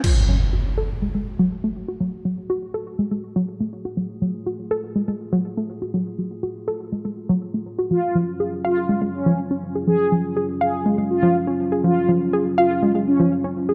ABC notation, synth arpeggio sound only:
X:1
M:4/4
L:1/16
Q:1/4=122
K:F#m
V:1 name="Synth arpeggio sound" clef=bass
F, z F, z F z A z G, G, z F, z A, z F | F, z F, z F z A z G, G, z F, z A, z F | F, z F, z F z A z G, G, z F, z A, z F | F, z F, z F z A z G, G, z F, z A, z F |
^E, z E, z G z ^e z G, G, z E, z C z G | ^E, z E, z G z ^e z G, G, z E, z C z G | ^E, z E, z G z ^e z G, G, z E, z C z G |]